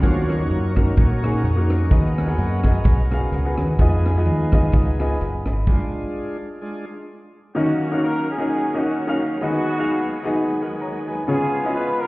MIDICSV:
0, 0, Header, 1, 7, 480
1, 0, Start_track
1, 0, Key_signature, -6, "minor"
1, 0, Tempo, 468384
1, 35, Time_signature, 4, 2, 24, 8
1, 12370, End_track
2, 0, Start_track
2, 0, Title_t, "String section"
2, 0, Program_c, 0, 48
2, 21, Note_on_c, 0, 73, 65
2, 26, Note_on_c, 0, 82, 64
2, 27, Note_on_c, 0, 75, 74
2, 27, Note_on_c, 0, 85, 78
2, 1932, Note_off_c, 0, 73, 0
2, 1934, Note_off_c, 0, 82, 0
2, 1935, Note_off_c, 0, 85, 0
2, 1962, Note_on_c, 0, 78, 62
2, 1963, Note_on_c, 0, 80, 60
2, 3869, Note_off_c, 0, 78, 0
2, 3879, Note_on_c, 0, 77, 63
2, 5770, Note_off_c, 0, 75, 0
2, 5778, Note_off_c, 0, 80, 0
2, 5791, Note_off_c, 0, 77, 0
2, 12370, End_track
3, 0, Start_track
3, 0, Title_t, "Grand piano"
3, 0, Program_c, 1, 0
3, 0, Note_on_c, 1, 65, 57
3, 0, Note_on_c, 1, 74, 67
3, 18, Note_on_c, 1, 58, 56
3, 24, Note_on_c, 1, 51, 53
3, 25, Note_on_c, 1, 63, 53
3, 33, Note_on_c, 1, 66, 59
3, 36, Note_on_c, 1, 73, 64
3, 278, Note_off_c, 1, 74, 0
3, 282, Note_off_c, 1, 65, 0
3, 314, Note_off_c, 1, 58, 0
3, 317, Note_off_c, 1, 63, 0
3, 322, Note_off_c, 1, 66, 0
3, 323, Note_off_c, 1, 73, 0
3, 392, Note_on_c, 1, 58, 60
3, 401, Note_on_c, 1, 63, 58
3, 407, Note_on_c, 1, 66, 57
3, 414, Note_on_c, 1, 73, 71
3, 665, Note_off_c, 1, 58, 0
3, 670, Note_off_c, 1, 63, 0
3, 673, Note_off_c, 1, 66, 0
3, 676, Note_off_c, 1, 73, 0
3, 737, Note_off_c, 1, 51, 0
3, 772, Note_on_c, 1, 58, 60
3, 775, Note_on_c, 1, 63, 57
3, 783, Note_on_c, 1, 66, 51
3, 791, Note_on_c, 1, 70, 67
3, 1112, Note_off_c, 1, 58, 0
3, 1114, Note_off_c, 1, 63, 0
3, 1118, Note_off_c, 1, 66, 0
3, 1122, Note_off_c, 1, 70, 0
3, 1253, Note_on_c, 1, 58, 61
3, 1261, Note_on_c, 1, 63, 62
3, 1267, Note_on_c, 1, 66, 54
3, 1273, Note_on_c, 1, 68, 72
3, 1495, Note_off_c, 1, 58, 0
3, 1499, Note_off_c, 1, 63, 0
3, 1502, Note_off_c, 1, 66, 0
3, 1505, Note_off_c, 1, 68, 0
3, 1599, Note_on_c, 1, 58, 67
3, 1605, Note_on_c, 1, 63, 60
3, 1610, Note_on_c, 1, 66, 58
3, 1617, Note_on_c, 1, 70, 71
3, 1865, Note_off_c, 1, 58, 0
3, 1868, Note_off_c, 1, 63, 0
3, 1871, Note_off_c, 1, 66, 0
3, 1874, Note_off_c, 1, 70, 0
3, 1947, Note_on_c, 1, 59, 62
3, 1953, Note_on_c, 1, 51, 53
3, 1953, Note_on_c, 1, 66, 58
3, 1956, Note_on_c, 1, 68, 53
3, 1963, Note_on_c, 1, 75, 71
3, 2241, Note_off_c, 1, 59, 0
3, 2245, Note_off_c, 1, 66, 0
3, 2246, Note_off_c, 1, 68, 0
3, 2249, Note_off_c, 1, 75, 0
3, 2321, Note_on_c, 1, 59, 78
3, 2326, Note_on_c, 1, 66, 65
3, 2332, Note_on_c, 1, 68, 67
3, 2337, Note_on_c, 1, 78, 83
3, 2593, Note_off_c, 1, 59, 0
3, 2595, Note_off_c, 1, 66, 0
3, 2598, Note_off_c, 1, 68, 0
3, 2601, Note_off_c, 1, 78, 0
3, 2666, Note_off_c, 1, 51, 0
3, 2709, Note_on_c, 1, 59, 65
3, 2712, Note_on_c, 1, 66, 64
3, 2720, Note_on_c, 1, 68, 65
3, 2727, Note_on_c, 1, 75, 78
3, 3044, Note_off_c, 1, 59, 0
3, 3046, Note_off_c, 1, 66, 0
3, 3050, Note_off_c, 1, 68, 0
3, 3053, Note_off_c, 1, 75, 0
3, 3185, Note_on_c, 1, 59, 76
3, 3189, Note_on_c, 1, 66, 71
3, 3197, Note_on_c, 1, 68, 70
3, 3209, Note_on_c, 1, 77, 78
3, 3425, Note_off_c, 1, 59, 0
3, 3428, Note_off_c, 1, 66, 0
3, 3432, Note_off_c, 1, 68, 0
3, 3438, Note_off_c, 1, 77, 0
3, 3534, Note_on_c, 1, 59, 81
3, 3542, Note_on_c, 1, 66, 78
3, 3544, Note_on_c, 1, 68, 68
3, 3554, Note_on_c, 1, 71, 79
3, 3797, Note_off_c, 1, 59, 0
3, 3801, Note_off_c, 1, 66, 0
3, 3802, Note_off_c, 1, 68, 0
3, 3807, Note_off_c, 1, 71, 0
3, 3886, Note_on_c, 1, 59, 78
3, 3890, Note_on_c, 1, 65, 74
3, 3896, Note_on_c, 1, 68, 64
3, 3903, Note_on_c, 1, 75, 90
3, 4175, Note_off_c, 1, 59, 0
3, 4177, Note_off_c, 1, 65, 0
3, 4180, Note_off_c, 1, 68, 0
3, 4184, Note_off_c, 1, 75, 0
3, 4262, Note_on_c, 1, 59, 74
3, 4270, Note_on_c, 1, 65, 64
3, 4272, Note_on_c, 1, 68, 70
3, 4279, Note_on_c, 1, 75, 77
3, 4528, Note_off_c, 1, 59, 0
3, 4532, Note_off_c, 1, 65, 0
3, 4533, Note_off_c, 1, 68, 0
3, 4536, Note_off_c, 1, 75, 0
3, 4636, Note_on_c, 1, 59, 71
3, 4643, Note_on_c, 1, 65, 62
3, 4649, Note_on_c, 1, 68, 70
3, 4653, Note_on_c, 1, 75, 81
3, 4972, Note_off_c, 1, 59, 0
3, 4976, Note_off_c, 1, 65, 0
3, 4979, Note_off_c, 1, 68, 0
3, 4981, Note_off_c, 1, 75, 0
3, 5115, Note_on_c, 1, 59, 76
3, 5119, Note_on_c, 1, 65, 65
3, 5126, Note_on_c, 1, 68, 71
3, 5134, Note_on_c, 1, 75, 83
3, 5338, Note_on_c, 1, 80, 57
3, 5339, Note_off_c, 1, 75, 0
3, 5347, Note_on_c, 1, 71, 52
3, 5355, Note_off_c, 1, 59, 0
3, 5357, Note_off_c, 1, 65, 0
3, 5360, Note_off_c, 1, 68, 0
3, 5591, Note_off_c, 1, 80, 0
3, 5596, Note_off_c, 1, 71, 0
3, 5600, Note_on_c, 1, 83, 59
3, 5612, Note_on_c, 1, 75, 45
3, 6059, Note_off_c, 1, 83, 0
3, 6065, Note_off_c, 1, 75, 0
3, 7735, Note_on_c, 1, 61, 78
3, 7738, Note_on_c, 1, 63, 69
3, 7743, Note_on_c, 1, 51, 64
3, 7745, Note_on_c, 1, 66, 68
3, 7751, Note_on_c, 1, 70, 68
3, 7752, Note_on_c, 1, 75, 77
3, 8023, Note_off_c, 1, 61, 0
3, 8025, Note_off_c, 1, 63, 0
3, 8029, Note_off_c, 1, 66, 0
3, 8031, Note_off_c, 1, 70, 0
3, 8032, Note_off_c, 1, 75, 0
3, 8110, Note_on_c, 1, 61, 77
3, 8115, Note_on_c, 1, 63, 71
3, 8116, Note_on_c, 1, 66, 74
3, 8122, Note_on_c, 1, 70, 74
3, 8128, Note_on_c, 1, 77, 80
3, 8446, Note_off_c, 1, 51, 0
3, 8472, Note_off_c, 1, 61, 0
3, 8474, Note_off_c, 1, 63, 0
3, 8475, Note_off_c, 1, 66, 0
3, 8478, Note_off_c, 1, 70, 0
3, 8481, Note_off_c, 1, 77, 0
3, 8586, Note_on_c, 1, 61, 74
3, 8587, Note_on_c, 1, 63, 71
3, 8593, Note_on_c, 1, 66, 69
3, 8602, Note_on_c, 1, 70, 69
3, 8604, Note_on_c, 1, 75, 84
3, 8851, Note_off_c, 1, 61, 0
3, 8852, Note_off_c, 1, 63, 0
3, 8855, Note_off_c, 1, 66, 0
3, 8859, Note_off_c, 1, 70, 0
3, 8860, Note_off_c, 1, 75, 0
3, 8953, Note_on_c, 1, 61, 75
3, 8956, Note_on_c, 1, 63, 71
3, 8963, Note_on_c, 1, 66, 72
3, 8970, Note_on_c, 1, 70, 67
3, 8972, Note_on_c, 1, 75, 85
3, 9192, Note_off_c, 1, 61, 0
3, 9194, Note_off_c, 1, 63, 0
3, 9197, Note_off_c, 1, 66, 0
3, 9201, Note_off_c, 1, 70, 0
3, 9202, Note_off_c, 1, 75, 0
3, 9298, Note_on_c, 1, 61, 79
3, 9302, Note_on_c, 1, 63, 77
3, 9305, Note_on_c, 1, 66, 70
3, 9308, Note_on_c, 1, 70, 78
3, 9312, Note_on_c, 1, 77, 98
3, 9560, Note_off_c, 1, 61, 0
3, 9562, Note_off_c, 1, 63, 0
3, 9564, Note_off_c, 1, 66, 0
3, 9565, Note_off_c, 1, 70, 0
3, 9567, Note_off_c, 1, 77, 0
3, 9641, Note_on_c, 1, 59, 77
3, 9650, Note_on_c, 1, 63, 72
3, 9652, Note_on_c, 1, 66, 72
3, 9654, Note_on_c, 1, 51, 62
3, 9660, Note_on_c, 1, 68, 70
3, 9663, Note_on_c, 1, 75, 83
3, 9932, Note_off_c, 1, 59, 0
3, 9936, Note_off_c, 1, 63, 0
3, 9937, Note_off_c, 1, 66, 0
3, 9941, Note_off_c, 1, 68, 0
3, 9943, Note_off_c, 1, 75, 0
3, 10017, Note_on_c, 1, 59, 80
3, 10022, Note_on_c, 1, 63, 78
3, 10026, Note_on_c, 1, 66, 70
3, 10031, Note_on_c, 1, 68, 72
3, 10035, Note_on_c, 1, 77, 92
3, 10355, Note_off_c, 1, 51, 0
3, 10380, Note_off_c, 1, 59, 0
3, 10382, Note_off_c, 1, 63, 0
3, 10385, Note_off_c, 1, 66, 0
3, 10387, Note_off_c, 1, 68, 0
3, 10389, Note_off_c, 1, 77, 0
3, 10485, Note_on_c, 1, 59, 100
3, 10493, Note_on_c, 1, 63, 80
3, 10499, Note_on_c, 1, 66, 83
3, 10501, Note_on_c, 1, 68, 85
3, 10509, Note_on_c, 1, 75, 99
3, 10755, Note_off_c, 1, 59, 0
3, 10759, Note_off_c, 1, 63, 0
3, 10762, Note_off_c, 1, 66, 0
3, 10763, Note_off_c, 1, 68, 0
3, 10767, Note_off_c, 1, 75, 0
3, 10880, Note_on_c, 1, 78, 69
3, 10885, Note_on_c, 1, 70, 65
3, 11075, Note_off_c, 1, 78, 0
3, 11078, Note_off_c, 1, 70, 0
3, 11083, Note_on_c, 1, 82, 69
3, 11089, Note_on_c, 1, 73, 64
3, 11335, Note_off_c, 1, 82, 0
3, 11339, Note_off_c, 1, 73, 0
3, 11350, Note_on_c, 1, 80, 67
3, 11356, Note_on_c, 1, 71, 54
3, 11551, Note_on_c, 1, 59, 77
3, 11557, Note_on_c, 1, 61, 72
3, 11559, Note_on_c, 1, 49, 64
3, 11561, Note_on_c, 1, 65, 70
3, 11566, Note_on_c, 1, 68, 74
3, 11570, Note_on_c, 1, 73, 88
3, 11802, Note_off_c, 1, 80, 0
3, 11805, Note_off_c, 1, 71, 0
3, 11840, Note_off_c, 1, 59, 0
3, 11843, Note_off_c, 1, 61, 0
3, 11845, Note_off_c, 1, 65, 0
3, 11848, Note_off_c, 1, 68, 0
3, 11850, Note_off_c, 1, 73, 0
3, 11926, Note_on_c, 1, 59, 82
3, 11933, Note_on_c, 1, 61, 73
3, 11938, Note_on_c, 1, 64, 64
3, 11940, Note_on_c, 1, 68, 79
3, 11945, Note_on_c, 1, 75, 91
3, 11984, Note_off_c, 1, 64, 0
3, 11993, Note_on_c, 1, 65, 74
3, 12261, Note_off_c, 1, 49, 0
3, 12288, Note_off_c, 1, 59, 0
3, 12291, Note_off_c, 1, 61, 0
3, 12295, Note_off_c, 1, 68, 0
3, 12297, Note_off_c, 1, 75, 0
3, 12321, Note_off_c, 1, 65, 0
3, 12370, End_track
4, 0, Start_track
4, 0, Title_t, "Horn section"
4, 0, Program_c, 2, 61
4, 7748, Note_on_c, 2, 66, 100
4, 7751, Note_on_c, 2, 61, 77
4, 7753, Note_on_c, 2, 58, 67
4, 8188, Note_off_c, 2, 66, 0
4, 8239, Note_on_c, 2, 70, 120
4, 8477, Note_off_c, 2, 70, 0
4, 8486, Note_off_c, 2, 61, 0
4, 8498, Note_on_c, 2, 61, 73
4, 8517, Note_on_c, 2, 68, 107
4, 8662, Note_off_c, 2, 58, 0
4, 8968, Note_off_c, 2, 61, 0
4, 8977, Note_on_c, 2, 58, 65
4, 8979, Note_off_c, 2, 68, 0
4, 8980, Note_on_c, 2, 61, 63
4, 8996, Note_on_c, 2, 66, 90
4, 9457, Note_off_c, 2, 66, 0
4, 9617, Note_off_c, 2, 58, 0
4, 9618, Note_off_c, 2, 61, 0
4, 9666, Note_on_c, 2, 66, 126
4, 9672, Note_on_c, 2, 59, 93
4, 10571, Note_off_c, 2, 66, 0
4, 10574, Note_off_c, 2, 59, 0
4, 11552, Note_on_c, 2, 68, 108
4, 11561, Note_on_c, 2, 59, 79
4, 11561, Note_on_c, 2, 65, 80
4, 11998, Note_off_c, 2, 68, 0
4, 12040, Note_on_c, 2, 71, 121
4, 12302, Note_on_c, 2, 70, 104
4, 12304, Note_off_c, 2, 71, 0
4, 12370, Note_off_c, 2, 59, 0
4, 12370, Note_off_c, 2, 65, 0
4, 12370, Note_off_c, 2, 70, 0
4, 12370, End_track
5, 0, Start_track
5, 0, Title_t, "Tonewheel organ"
5, 0, Program_c, 3, 16
5, 0, Note_on_c, 3, 53, 52
5, 0, Note_on_c, 3, 62, 62
5, 16, Note_on_c, 3, 54, 49
5, 26, Note_on_c, 3, 66, 64
5, 27, Note_on_c, 3, 61, 43
5, 31, Note_on_c, 3, 65, 52
5, 32, Note_on_c, 3, 73, 93
5, 35, Note_on_c, 3, 70, 65
5, 270, Note_off_c, 3, 62, 0
5, 276, Note_off_c, 3, 53, 0
5, 360, Note_off_c, 3, 54, 0
5, 366, Note_off_c, 3, 61, 0
5, 368, Note_off_c, 3, 65, 0
5, 741, Note_off_c, 3, 73, 0
5, 767, Note_off_c, 3, 66, 0
5, 771, Note_off_c, 3, 70, 0
5, 780, Note_on_c, 3, 66, 61
5, 781, Note_on_c, 3, 61, 61
5, 783, Note_on_c, 3, 70, 81
5, 1467, Note_off_c, 3, 61, 0
5, 1468, Note_off_c, 3, 66, 0
5, 1477, Note_off_c, 3, 70, 0
5, 1479, Note_on_c, 3, 61, 49
5, 1480, Note_on_c, 3, 66, 44
5, 1490, Note_on_c, 3, 70, 70
5, 1949, Note_off_c, 3, 66, 0
5, 1956, Note_on_c, 3, 58, 50
5, 1957, Note_on_c, 3, 59, 46
5, 1961, Note_on_c, 3, 66, 57
5, 2671, Note_off_c, 3, 58, 0
5, 2671, Note_off_c, 3, 59, 0
5, 2673, Note_off_c, 3, 66, 0
5, 3634, Note_off_c, 3, 61, 0
5, 3639, Note_off_c, 3, 70, 0
5, 3881, Note_on_c, 3, 56, 52
5, 3891, Note_on_c, 3, 59, 46
5, 3892, Note_on_c, 3, 63, 53
5, 5108, Note_off_c, 3, 56, 0
5, 5115, Note_off_c, 3, 59, 0
5, 5115, Note_off_c, 3, 63, 0
5, 5120, Note_on_c, 3, 56, 38
5, 5127, Note_on_c, 3, 59, 36
5, 5128, Note_on_c, 3, 63, 46
5, 5311, Note_off_c, 3, 56, 0
5, 5315, Note_off_c, 3, 59, 0
5, 5315, Note_off_c, 3, 63, 0
5, 5814, Note_on_c, 3, 56, 48
5, 5821, Note_on_c, 3, 62, 44
5, 5831, Note_on_c, 3, 65, 53
5, 6527, Note_off_c, 3, 56, 0
5, 6531, Note_off_c, 3, 62, 0
5, 6536, Note_off_c, 3, 65, 0
5, 6781, Note_on_c, 3, 56, 45
5, 6788, Note_on_c, 3, 62, 36
5, 6790, Note_on_c, 3, 65, 52
5, 7021, Note_off_c, 3, 56, 0
5, 7025, Note_off_c, 3, 62, 0
5, 7026, Note_off_c, 3, 65, 0
5, 7745, Note_on_c, 3, 54, 68
5, 7745, Note_on_c, 3, 61, 66
5, 7748, Note_on_c, 3, 58, 68
5, 7748, Note_on_c, 3, 65, 63
5, 7749, Note_on_c, 3, 51, 70
5, 7802, Note_on_c, 3, 66, 72
5, 7807, Note_off_c, 3, 65, 0
5, 9616, Note_off_c, 3, 54, 0
5, 9616, Note_off_c, 3, 61, 0
5, 9618, Note_off_c, 3, 51, 0
5, 9618, Note_off_c, 3, 58, 0
5, 9638, Note_on_c, 3, 56, 61
5, 9640, Note_on_c, 3, 39, 74
5, 9642, Note_on_c, 3, 67, 68
5, 9645, Note_off_c, 3, 66, 0
5, 9645, Note_on_c, 3, 59, 69
5, 9646, Note_on_c, 3, 54, 62
5, 9647, Note_on_c, 3, 63, 69
5, 9704, Note_on_c, 3, 68, 83
5, 9710, Note_off_c, 3, 67, 0
5, 11513, Note_off_c, 3, 56, 0
5, 11514, Note_off_c, 3, 39, 0
5, 11517, Note_off_c, 3, 59, 0
5, 11518, Note_off_c, 3, 54, 0
5, 11518, Note_off_c, 3, 63, 0
5, 11547, Note_off_c, 3, 68, 0
5, 11568, Note_on_c, 3, 61, 67
5, 11569, Note_on_c, 3, 51, 55
5, 11569, Note_on_c, 3, 68, 78
5, 11572, Note_on_c, 3, 59, 70
5, 11576, Note_on_c, 3, 56, 70
5, 11627, Note_off_c, 3, 51, 0
5, 11628, Note_on_c, 3, 53, 79
5, 12370, Note_off_c, 3, 53, 0
5, 12370, Note_off_c, 3, 56, 0
5, 12370, Note_off_c, 3, 59, 0
5, 12370, Note_off_c, 3, 61, 0
5, 12370, Note_off_c, 3, 68, 0
5, 12370, End_track
6, 0, Start_track
6, 0, Title_t, "Fingered electric bass"
6, 0, Program_c, 4, 33
6, 37, Note_on_c, 4, 39, 78
6, 444, Note_off_c, 4, 39, 0
6, 517, Note_on_c, 4, 42, 74
6, 924, Note_off_c, 4, 42, 0
6, 1000, Note_on_c, 4, 46, 75
6, 1407, Note_off_c, 4, 46, 0
6, 1474, Note_on_c, 4, 41, 77
6, 1884, Note_off_c, 4, 41, 0
6, 1958, Note_on_c, 4, 39, 77
6, 2368, Note_off_c, 4, 39, 0
6, 2440, Note_on_c, 4, 42, 72
6, 2850, Note_off_c, 4, 42, 0
6, 2923, Note_on_c, 4, 35, 75
6, 3332, Note_off_c, 4, 35, 0
6, 3400, Note_on_c, 4, 37, 81
6, 3631, Note_off_c, 4, 37, 0
6, 3672, Note_on_c, 4, 39, 76
6, 3853, Note_off_c, 4, 39, 0
6, 3884, Note_on_c, 4, 41, 99
6, 4369, Note_off_c, 4, 41, 0
6, 4369, Note_on_c, 4, 39, 77
6, 4778, Note_off_c, 4, 39, 0
6, 4855, Note_on_c, 4, 37, 84
6, 5263, Note_off_c, 4, 37, 0
6, 5333, Note_on_c, 4, 30, 79
6, 5562, Note_off_c, 4, 30, 0
6, 5602, Note_on_c, 4, 32, 72
6, 5783, Note_off_c, 4, 32, 0
6, 12370, End_track
7, 0, Start_track
7, 0, Title_t, "Drums"
7, 32, Note_on_c, 9, 42, 66
7, 35, Note_on_c, 9, 36, 81
7, 135, Note_off_c, 9, 42, 0
7, 137, Note_off_c, 9, 36, 0
7, 304, Note_on_c, 9, 42, 59
7, 307, Note_on_c, 9, 37, 86
7, 406, Note_off_c, 9, 42, 0
7, 410, Note_off_c, 9, 37, 0
7, 518, Note_on_c, 9, 42, 69
7, 620, Note_off_c, 9, 42, 0
7, 782, Note_on_c, 9, 37, 87
7, 784, Note_on_c, 9, 42, 56
7, 786, Note_on_c, 9, 36, 72
7, 884, Note_off_c, 9, 37, 0
7, 887, Note_off_c, 9, 42, 0
7, 889, Note_off_c, 9, 36, 0
7, 989, Note_on_c, 9, 42, 77
7, 999, Note_on_c, 9, 36, 102
7, 1091, Note_off_c, 9, 42, 0
7, 1101, Note_off_c, 9, 36, 0
7, 1265, Note_on_c, 9, 42, 63
7, 1270, Note_on_c, 9, 37, 94
7, 1368, Note_off_c, 9, 42, 0
7, 1372, Note_off_c, 9, 37, 0
7, 1485, Note_on_c, 9, 42, 80
7, 1588, Note_off_c, 9, 42, 0
7, 1744, Note_on_c, 9, 37, 101
7, 1748, Note_on_c, 9, 42, 67
7, 1847, Note_off_c, 9, 37, 0
7, 1851, Note_off_c, 9, 42, 0
7, 1959, Note_on_c, 9, 36, 86
7, 1962, Note_on_c, 9, 42, 70
7, 2061, Note_off_c, 9, 36, 0
7, 2065, Note_off_c, 9, 42, 0
7, 2233, Note_on_c, 9, 42, 63
7, 2237, Note_on_c, 9, 37, 92
7, 2336, Note_off_c, 9, 42, 0
7, 2339, Note_off_c, 9, 37, 0
7, 2441, Note_on_c, 9, 42, 74
7, 2543, Note_off_c, 9, 42, 0
7, 2701, Note_on_c, 9, 37, 95
7, 2703, Note_on_c, 9, 42, 54
7, 2710, Note_on_c, 9, 36, 73
7, 2803, Note_off_c, 9, 37, 0
7, 2806, Note_off_c, 9, 42, 0
7, 2812, Note_off_c, 9, 36, 0
7, 2909, Note_on_c, 9, 42, 79
7, 2922, Note_on_c, 9, 36, 109
7, 3012, Note_off_c, 9, 42, 0
7, 3025, Note_off_c, 9, 36, 0
7, 3189, Note_on_c, 9, 42, 67
7, 3193, Note_on_c, 9, 37, 81
7, 3291, Note_off_c, 9, 42, 0
7, 3296, Note_off_c, 9, 37, 0
7, 3409, Note_on_c, 9, 42, 74
7, 3511, Note_off_c, 9, 42, 0
7, 3664, Note_on_c, 9, 37, 97
7, 3668, Note_on_c, 9, 42, 63
7, 3767, Note_off_c, 9, 37, 0
7, 3771, Note_off_c, 9, 42, 0
7, 3881, Note_on_c, 9, 42, 69
7, 3885, Note_on_c, 9, 36, 83
7, 3984, Note_off_c, 9, 42, 0
7, 3987, Note_off_c, 9, 36, 0
7, 4155, Note_on_c, 9, 42, 61
7, 4159, Note_on_c, 9, 37, 90
7, 4258, Note_off_c, 9, 42, 0
7, 4261, Note_off_c, 9, 37, 0
7, 4360, Note_on_c, 9, 42, 71
7, 4462, Note_off_c, 9, 42, 0
7, 4634, Note_on_c, 9, 37, 86
7, 4636, Note_on_c, 9, 42, 56
7, 4641, Note_on_c, 9, 36, 86
7, 4736, Note_off_c, 9, 37, 0
7, 4739, Note_off_c, 9, 42, 0
7, 4743, Note_off_c, 9, 36, 0
7, 4839, Note_on_c, 9, 42, 85
7, 4852, Note_on_c, 9, 36, 106
7, 4941, Note_off_c, 9, 42, 0
7, 4955, Note_off_c, 9, 36, 0
7, 5118, Note_on_c, 9, 42, 68
7, 5122, Note_on_c, 9, 37, 87
7, 5220, Note_off_c, 9, 42, 0
7, 5225, Note_off_c, 9, 37, 0
7, 5337, Note_on_c, 9, 42, 80
7, 5440, Note_off_c, 9, 42, 0
7, 5592, Note_on_c, 9, 37, 94
7, 5596, Note_on_c, 9, 42, 66
7, 5695, Note_off_c, 9, 37, 0
7, 5699, Note_off_c, 9, 42, 0
7, 5812, Note_on_c, 9, 49, 63
7, 5813, Note_on_c, 9, 36, 78
7, 5914, Note_off_c, 9, 49, 0
7, 5915, Note_off_c, 9, 36, 0
7, 12370, End_track
0, 0, End_of_file